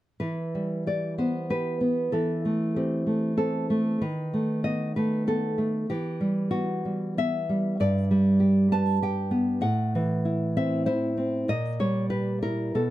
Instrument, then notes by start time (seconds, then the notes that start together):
nylon-string guitar
0.20 E3 B4
0.55 G3
0.87 G4 D5
1.18 B3 C5
1.50 G4 B4
1.81 B3
2.12 E3 A4
2.45 A3
2.76 C4 G4
3.07 A3
3.37 C4 A4
3.70 A3
4.01 D#3 B4
4.33 A3
4.64 B3 D#5
4.96 A3 B4
5.27 B3 A4
5.58 A3
5.90 E3 G4
6.21 G3
6.51 B3 F#4
6.85 G3
7.18 B3 E5
7.49 G3
7.80 G2 D5
8.11 G3
8.40 G4
8.72 B4 A5
9.02 G4 G5
9.31 B3
9.61 A2 F#5
9.95 E3
10.25 E4
10.57 C4 E5
10.86 E4 C5
11.17 C4
11.48 A#2 D#5
11.80 G3 C#5
12.10 G4 B4
12.43 E4 A#4
12.75 B2 A4